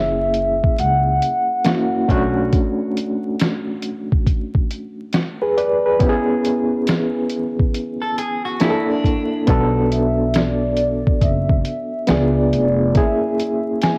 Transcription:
Already playing: upright bass F#1, reed electric piano A#3 C#4 E4 G#4, vibraphone E5
0.34 closed hi-hat
0.64 kick
0.79 upright bass C#2, vibraphone F#5, closed hi-hat
1.22 closed hi-hat
1.65 reed electric piano A#3 C#4 E4 F#4, snare, closed hi-hat
2.08 upright bass B1, reed electric piano A3 C#4 D4 F#4, kick, closed hi-hat
2.53 kick, closed hi-hat
2.97 closed hi-hat
3.40 snare, closed hi-hat
3.82 closed hi-hat
4.12 kick
4.26 kick, closed hi-hat
4.55 kick
4.71 closed hi-hat
5.13 snare, closed hi-hat
5.42 reed electric piano G#4 B4
5.58 reed electric piano B4 D5, closed hi-hat
5.86 reed electric piano G#4 B4
5.99 reed electric piano B3 C#4 E4 G4, kick, closed hi-hat
6.09 reed electric piano G#4
6.45 closed hi-hat
6.87 snare, closed hi-hat
7.30 closed hi-hat
7.60 kick
7.74 closed hi-hat
8.02 clean electric guitar A4
8.18 clean electric guitar G#4, closed hi-hat
8.45 clean electric guitar F#4
8.60 reed electric piano A#3 D4 E4 G#4, clean electric guitar E4, snare, closed hi-hat
8.70 reed electric piano A4
8.89 clean electric guitar D4
9.04 kick, closed hi-hat
9.47 upright bass B1, reed electric piano B3 D4 F#4 A4, kick, closed hi-hat
9.92 vibraphone E5, closed hi-hat
10.34 vibraphone D5, snare, closed hi-hat
10.77 closed hi-hat
11.07 kick
11.21 upright bass F#1, vibraphone E5, kick, closed hi-hat
11.50 kick
11.65 closed hi-hat
12.07 upright bass C#2, reed electric piano B3 D4 F4 G#4, vibraphone D5, snare, closed hi-hat
12.53 upright bass F1, closed hi-hat
12.94 reed electric piano A#3 C#4 E4 G#4, vibraphone E5, kick, closed hi-hat
13.39 closed hi-hat
13.82 vibraphone G#5, snare, closed hi-hat

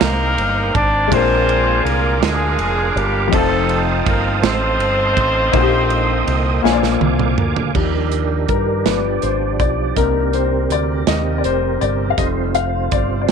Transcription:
Already playing: upright piano G#2 G#3 C4 D#4 C5 G5, horn section A#3 D#4 G4 A#4, tonewheel organ C5 G5
0.01 fingered electric bass C2, snare, ride
0.38 fingered electric bass G1, ride
0.75 fingered electric bass G#1, horn section D4 D5, kick, ride
1.08 upright piano A#2 G#3 A#3 D4, horn section C4 C5, tonewheel organ A#4 F5 D6
1.12 fingered electric bass A#1, upright piano F4 A#4, horn section F4 G#4, kick, ride
1.49 ride
1.84 fingered electric bass C2, horn section A#3 A#4, ride
2.21 fingered electric bass D2, horn section G#3 D4 F4 G#4, snare, ride
2.58 fingered electric bass F1, ride
2.95 fingered electric bass G1, horn section G3 G4, ride
3.28 upright piano F3 C4 D#4
3.33 fingered electric bass F1, horn section A3 C4 D#4 A4, upright piano F4 C5, tonewheel organ C5 A5 D#6, kick, ride
3.69 ride
4.06 fingered electric bass G1, horn section A#3 A#4, kick, ride
4.42 fingered electric bass A1, horn section C4 D#4 A4 C5, snare, ride
4.79 fingered electric bass G1, ride
5.17 fingered electric bass A1, kick, ride
5.52 fingered electric bass A#1, upright piano A#2 A#3 D#4 F#4, tonewheel organ A#3 D#5 G5, kick, ride
5.62 upright piano G4
5.90 ride
6.27 fingered electric bass C2, ride
6.62 fingered electric bass A#1, upright piano A#2 A#3 F4 C#5 G#5, tonewheel organ F5 G#5 D6, snare
6.73 upright piano D5
6.83 snare
7.01 fingered electric bass C2, high tom
7.19 mid tom
7.37 fingered electric bass D2, mid tom
7.56 floor tom
7.75 fingered electric bass D#2, tonewheel organ D#3 D4 G4 A#4, upright piano F3 G3 D4, kick, crash
8.12 closed hi-hat
8.49 fingered electric bass G2, upright piano A#4, kick, closed hi-hat
8.85 fingered electric bass G1, upright piano F3 B3 D4 B4, tonewheel organ F3 D4 D5, snare, closed hi-hat
9.22 fingered electric bass G#1, upright piano C5, closed hi-hat
9.59 fingered electric bass B1, upright piano D5, kick, closed hi-hat
9.96 fingered electric bass C2, tonewheel organ C3 C4 A#4, upright piano A#3 D4 D#4 A#4, kick, closed hi-hat
10.33 upright piano C5, closed hi-hat
10.70 fingered electric bass D2, upright piano D5, closed hi-hat
11.07 fingered electric bass D#2, upright piano D#5, snare, closed hi-hat
11.38 upright piano D5
11.44 fingered electric bass F1, upright piano C5, closed hi-hat
11.81 fingered electric bass G1, upright piano D5, closed hi-hat
12.10 upright piano F5
12.17 fingered electric bass F1, upright piano G3 A3 D#4 D#5, tonewheel organ C4 F4 C5, kick, closed hi-hat
12.55 upright piano F5, closed hi-hat
12.92 fingered electric bass G1, upright piano D5, kick, closed hi-hat
13.22 upright piano D5
13.29 closed hi-hat

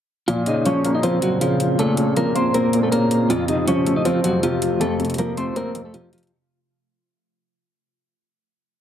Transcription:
0.28 ambient pad A#2 C#3 C4 F4, grand piano A#2, clean electric guitar F3 F4, closed hi-hat
0.46 grand piano C#3, clean electric guitar D#4 D#5, closed hi-hat
0.66 grand piano F3, clean electric guitar C#4 C#5, closed hi-hat
0.85 grand piano A#3, closed hi-hat
0.95 clean electric guitar D#4 D#5
1.03 clean electric guitar F3 F4, grand piano C4, closed hi-hat
1.22 grand piano A#2, clean electric guitar F#3 F#4, closed hi-hat
1.41 grand piano C#3, clean electric guitar F3 F4, closed hi-hat
1.60 closed hi-hat
1.78 grand piano A#2, clean electric guitar A3 A4, closed hi-hat
1.97 grand piano C#3, closed hi-hat
2.16 grand piano F3, clean electric guitar A#3 A#4, closed hi-hat
2.35 grand piano A#3, clean electric guitar C4 C5, closed hi-hat
2.54 clean electric guitar A#3 A#4, grand piano C4, closed hi-hat
2.73 grand piano A#2, closed hi-hat
2.83 clean electric guitar A3 A4
2.92 grand piano C#3, clean electric guitar A#3 A#4, closed hi-hat
3.11 closed hi-hat
3.30 grand piano F2, ambient pad C3 F3 A3, clean electric guitar F3 F4, closed hi-hat
3.48 grand piano C3, clean electric guitar D#4 D#5, closed hi-hat
3.67 grand piano F3, clean electric guitar C#4 C#5, closed hi-hat
3.86 grand piano A3, closed hi-hat
3.96 clean electric guitar D#4 D#5
4.05 clean electric guitar F3 F4, grand piano C4, closed hi-hat
4.24 grand piano F2, clean electric guitar F#3 F#4, closed hi-hat
4.43 grand piano C3, clean electric guitar F3 F4, closed hi-hat
4.62 closed hi-hat
4.80 grand piano F2, clean electric guitar A3 A4, closed hi-hat
5.00 grand piano C3, closed hi-hat
5.05 closed hi-hat
5.10 closed hi-hat
5.14 closed hi-hat
5.18 grand piano F3, clean electric guitar A#3 A#4, closed hi-hat
5.37 grand piano A3, clean electric guitar C4 C5, closed hi-hat
5.56 clean electric guitar A#3 A#4, grand piano C4, closed hi-hat
5.75 grand piano F2, closed hi-hat
5.85 clean electric guitar A3 A4
5.94 grand piano C3, clean electric guitar F3 F4, closed hi-hat
6.13 clean electric guitar F3 F4, closed hi-hat
6.18 closed hi-hat
6.23 closed hi-hat
6.27 closed hi-hat

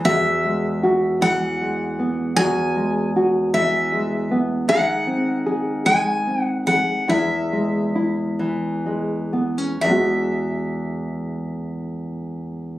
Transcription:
0.05 nylon-string guitar E2 F#4, steel-string acoustic guitar E5
0.45 nylon-string guitar G#3
0.83 nylon-string guitar F#4
1.21 nylon-string guitar E3, steel-string acoustic guitar F#5
1.61 nylon-string guitar G#3
1.99 nylon-string guitar B3
2.36 nylon-string guitar E2 F#4, steel-string acoustic guitar G#5
2.76 nylon-string guitar G#3
3.16 nylon-string guitar F#4
3.54 nylon-string guitar E3, steel-string acoustic guitar E5
3.92 nylon-string guitar G#3
4.31 nylon-string guitar B3
4.68 nylon-string guitar D#3 G#4, steel-string acoustic guitar F#5
5.07 nylon-string guitar C4
5.46 nylon-string guitar G#4
5.86 nylon-string guitar G#3, steel-string acoustic guitar G#5
6.27 nylon-string guitar C4
6.42 steel-string acoustic guitar F#5
6.67 nylon-string guitar G#4, steel-string acoustic guitar F#5
7.08 nylon-string guitar E2 E4, steel-string acoustic guitar E5
7.52 nylon-string guitar G#3
7.95 nylon-string guitar E4
8.39 nylon-string guitar E3
8.86 nylon-string guitar G#3
9.33 nylon-string guitar B3
9.58 nylon-string guitar C#4
9.81 nylon-string guitar E2, steel-string acoustic guitar E5
9.85 nylon-string guitar E3 G#3 B3
9.91 nylon-string guitar F#4

